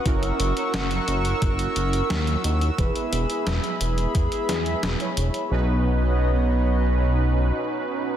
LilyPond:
<<
  \new Staff \with { instrumentName = "Analog synth pad" } { \time 4/4 \key b \major \tempo 4 = 88 << { e'''1~ | e'''1 | <b b' cis'' dis''>1 | } \\ { <ais' fis'' cis'''>1 | <gis' e'' b''>1 | r1 | } >> }
  \new Staff \with { instrumentName = "Analog polysynth" } { \time 4/4 \key b \major <cis' e' fis' ais'>8. <cis' e' fis' ais'>8. <cis' e' fis' ais'>2~ <cis' e' fis' ais'>8 | <b e' gis' b'>8. <b e' gis' b'>8. <b e' gis' b'>4.~ <b e' gis' b'>16 <b e' gis' cis''>8. | <cis' dis' fis' b'>1 | }
  \new Staff \with { instrumentName = "Analog synth bass" } { \clef bass \time 4/4 \key b \major fis,,8 fis,,8 fis,,8 fis,,8 fis,,8 fis,,8 dis,8 dis,8 | e,,8 e,,8 e,,8 e,,8 e,8 e,8 e,,8 e,,8 | b,,2. r4 | }
  \new DrumStaff \with { instrumentName = "Drums" } \drummode { \time 4/4 <hh bd>16 hh16 hh16 hh16 <hh sn>16 hh16 hh16 hh16 <hh bd>16 hh16 hh16 hh16 <hh sn>16 hh16 hh16 hh16 | <hh bd>16 hh16 hh16 hh16 <hh sn>16 hh16 hh16 hh16 <hh bd>16 hh16 <hh sn>16 hh16 <hh sn>16 hh16 hh16 hh16 | r4 r4 r4 r4 | }
>>